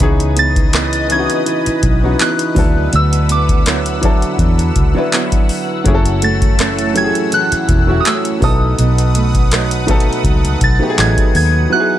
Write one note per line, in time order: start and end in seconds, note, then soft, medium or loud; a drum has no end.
0.00 1.26 C#2 loud
0.00 2.56 C#3 medium
0.00 0.70 E3 medium
0.00 0.36 B3 medium
0.00 0.71 B3 medium
0.00 0.71 C#4 medium
0.00 0.74 D#4 medium
0.00 0.71 D#4 medium
0.00 0.72 G#4 medium
0.00 5.82 B4 medium
0.00 2.54 D#5 medium
0.00 2.54 D#6 medium
0.00 kick loud
0.00 closed hi-hat medium
0.20 closed hi-hat medium
0.37 0.73 B3 medium
0.37 1.13 A6 loud
0.37 closed hi-hat medium
0.56 kick medium
0.56 closed hi-hat soft
0.73 1.10 E3 medium
0.73 2.20 B3 medium
0.73 2.20 D#4 medium
0.73 cross-stick loud
0.73 clap loud
0.73 closed hi-hat medium
0.93 closed hi-hat soft
1.09 1.69 E3 medium
1.09 1.46 E3 medium
1.09 1.70 B3 medium
1.09 1.70 C#4 medium
1.09 1.70 D#4 medium
1.09 1.18 E4 medium
1.09 2.24 G#6 loud
1.09 closed hi-hat medium
1.19 1.74 F#4 medium
1.30 closed hi-hat soft
1.46 2.19 E3 medium
1.46 closed hi-hat medium
1.66 muted fingered electric bass stroke soft
1.66 closed hi-hat medium
1.83 2.14 B1 medium
1.83 kick medium
1.83 closed hi-hat medium
2.01 2.56 E3 medium
2.01 2.54 B3 medium
2.01 2.57 C#4 medium
2.01 2.57 D#4 medium
2.01 2.58 F#4 medium
2.19 2.96 E3 medium
2.19 3.29 B3 medium
2.19 2.65 D#4 medium
2.19 2.96 F#6 medium
2.19 clap loud
2.19 closed hi-hat medium
2.39 closed hi-hat medium
2.55 2.87 D2 medium
2.55 2.92 D3 medium
2.55 3.73 F#3 medium
2.55 3.74 B3 medium
2.55 3.74 D4 medium
2.55 3.75 E4 medium
2.55 3.75 A4 medium
2.55 8.37 F#5 medium
2.55 5.82 E6 medium
2.55 kick loud
2.55 open hi-hat medium
2.93 4.19 D2 loud
2.93 5.86 D3 medium
2.93 3.28 E6 loud
2.93 closed hi-hat medium
3.13 closed hi-hat medium
3.29 3.66 B3 medium
3.29 4.36 D6 medium
3.29 closed hi-hat medium
3.49 kick medium
3.49 closed hi-hat soft
3.66 4.02 F#3 medium
3.66 5.12 B3 medium
3.66 5.13 E4 medium
3.66 cross-stick loud
3.66 clap loud
3.66 closed hi-hat medium
3.86 closed hi-hat soft
4.01 4.62 F#3 medium
4.01 4.39 F#3 medium
4.01 4.62 B3 medium
4.01 4.63 D4 medium
4.01 4.63 E4 medium
4.01 4.64 A4 medium
4.01 kick medium
4.01 closed hi-hat medium
4.22 closed hi-hat soft
4.38 4.69 E2 loud
4.38 5.12 F#3 medium
4.38 kick medium
4.38 closed hi-hat medium
4.59 closed hi-hat medium
4.76 4.92 C#2 medium
4.76 kick medium
4.76 closed hi-hat medium
4.94 5.52 F#3 medium
4.94 5.53 B3 medium
4.94 5.53 D4 medium
4.94 5.54 E4 medium
4.94 5.54 B4 medium
5.12 6.59 F#3 medium
5.12 5.94 B3 medium
5.12 6.60 E4 medium
5.12 clap loud
5.12 closed hi-hat medium
5.32 kick medium
5.32 closed hi-hat medium
5.49 open hi-hat medium
5.84 7.11 F#1 loud
5.84 8.42 F#2 medium
5.84 6.55 F#3 medium
5.84 6.56 A3 medium
5.84 8.39 A3 medium
5.84 6.56 C#4 medium
5.84 6.57 E4 medium
5.84 5.94 G#4 medium
5.84 8.39 E6 medium
5.84 kick loud
5.84 closed hi-hat medium
5.94 6.61 A4 medium
6.05 closed hi-hat medium
6.22 6.59 A3 medium
6.22 6.92 A6 loud
6.22 closed hi-hat medium
6.41 kick medium
6.41 closed hi-hat soft
6.59 6.94 E3 medium
6.59 8.05 A3 medium
6.59 8.05 C#4 medium
6.59 cross-stick loud
6.59 clap loud
6.59 closed hi-hat medium
6.79 closed hi-hat soft
6.94 7.31 E3 medium
6.94 7.55 F#3 medium
6.94 7.55 A3 medium
6.94 7.56 C#4 medium
6.94 7.56 E4 medium
6.94 7.04 G4 medium
6.94 7.31 G#6 loud
6.94 closed hi-hat medium
7.04 7.60 G#4 medium
7.15 closed hi-hat soft
7.32 8.04 E3 medium
7.32 8.02 F#6 loud
7.32 closed hi-hat medium
7.52 muted fingered electric bass stroke soft
7.52 closed hi-hat medium
7.68 7.99 E1 medium
7.68 kick medium
7.68 closed hi-hat medium
7.87 8.39 F#3 medium
7.87 8.39 A3 medium
7.87 8.42 C#4 medium
7.87 8.42 E4 medium
7.87 8.43 F#4 medium
8.00 8.06 D#6 medium
8.05 8.50 E3 medium
8.05 8.82 A3 medium
8.05 8.50 C#4 medium
8.05 8.21 E6 medium
8.05 clap loud
8.05 closed hi-hat medium
8.25 closed hi-hat medium
8.40 8.72 B1 loud
8.40 8.77 B2 medium
8.40 9.59 F#3 medium
8.40 9.59 A3 medium
8.40 9.60 B3 medium
8.40 9.60 D#4 medium
8.40 9.61 A4 medium
8.40 11.68 B4 medium
8.40 11.68 F#5 medium
8.40 11.68 D#6 medium
8.40 10.95 D#6 medium
8.40 kick loud
8.40 open hi-hat medium
8.79 10.04 B1 loud
8.79 11.71 B2 medium
8.79 closed hi-hat medium
8.98 closed hi-hat medium
9.15 9.51 A3 medium
9.15 closed hi-hat medium
9.34 kick medium
9.34 closed hi-hat soft
9.51 9.88 F#3 medium
9.51 10.97 A3 medium
9.51 10.99 D#4 medium
9.51 cross-stick loud
9.51 clap loud
9.51 closed hi-hat medium
9.71 closed hi-hat medium
9.87 10.47 F#3 medium
9.87 10.24 F#3 medium
9.87 10.48 A3 medium
9.87 10.48 B3 medium
9.87 10.48 D#4 medium
9.87 10.49 A4 loud
9.87 kick loud
9.87 closed hi-hat medium
10.00 closed hi-hat soft
10.13 closed hi-hat soft
10.24 10.55 C#2 medium
10.24 10.98 F#3 medium
10.24 kick medium
10.24 closed hi-hat medium
10.45 closed hi-hat medium
10.61 10.78 B1 medium
10.61 11.00 A6 loud
10.61 kick medium
10.61 closed hi-hat medium
10.79 11.38 F#3 medium
10.79 11.38 A3 medium
10.79 11.39 B3 medium
10.79 11.39 D#4 medium
10.79 10.88 G4 medium
10.90 11.43 G#4 loud
10.98 11.14 A1 medium
10.98 11.99 F#3 medium
10.98 11.79 A3 medium
10.98 11.99 D#4 medium
10.98 11.35 G#6 medium
10.98 clap loud
10.98 closed hi-hat medium
11.18 kick medium
11.18 closed hi-hat medium
11.35 11.65 D#2 medium
11.35 11.70 G#6 loud
11.35 open hi-hat medium
11.70 11.99 E3 medium
11.70 11.99 F#3 medium
11.70 11.99 B3 medium
11.70 11.99 D#4 medium
11.70 11.99 E4 medium
11.70 11.79 F#4 medium
11.70 11.99 G#4 medium
11.70 11.99 F#5 medium
11.70 11.99 F#6 loud
11.80 11.99 G#4 medium